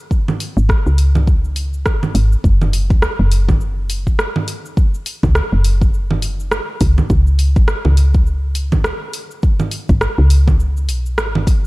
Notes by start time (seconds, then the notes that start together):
0.11 kick, shaker
0.28 low conga, shaker
0.40 open hi-hat, shaker
0.57 G#1, shaker
0.69 kick, cross-stick, shaker
0.86 C#2, shaker
0.98 open hi-hat, shaker
1.15 low conga, shaker
1.27 kick, shaker
1.45 shaker
1.56 open hi-hat, shaker
1.74 shaker
1.86 kick, cross-stick, shaker
2.03 low conga, shaker
2.15 G#1, open hi-hat, shaker
2.32 shaker
2.44 F#1, kick, shaker
2.62 low conga, shaker
2.73 open hi-hat, shaker
2.90 C#2, kick, shaker
3.02 cross-stick, shaker
3.19 F#1
3.32 open hi-hat, shaker
3.49 kick, low conga, shaker
3.61 shaker
3.90 open hi-hat, shaker
4.07 kick, shaker
4.19 cross-stick, shaker
4.36 low conga
4.48 open hi-hat, shaker
4.65 shaker
4.77 kick, shaker
4.94 shaker
5.06 open hi-hat, shaker
5.23 C#2, kick, low conga, shaker
5.35 cross-stick, shaker
5.52 F#1
5.64 open hi-hat, shaker
5.82 kick, shaker
5.94 shaker
6.11 low conga
6.22 open hi-hat, shaker
6.40 shaker
6.52 cross-stick, shaker
6.81 C#2, kick, open hi-hat, shaker
6.98 low conga, shaker
7.10 C#2, kick, shaker
7.27 shaker
7.39 open hi-hat, shaker
7.56 G#1, kick, shaker
7.68 cross-stick, shaker
7.85 C#2, low conga
7.97 open hi-hat, shaker
8.14 kick, shaker
8.27 shaker
8.55 open hi-hat, shaker
8.72 kick, low conga, shaker
8.84 cross-stick, shaker
9.13 open hi-hat, shaker
9.31 shaker
9.43 kick, shaker
9.60 low conga, shaker
9.71 open hi-hat, shaker
9.89 G#1, kick, shaker
10.01 cross-stick, shaker
10.18 C#2
10.30 open hi-hat, shaker
10.48 kick, low conga, shaker
10.60 shaker
10.77 shaker
10.88 B1, open hi-hat, shaker
11.06 shaker
11.18 G#1, cross-stick, shaker
11.35 low conga
11.47 kick, open hi-hat, shaker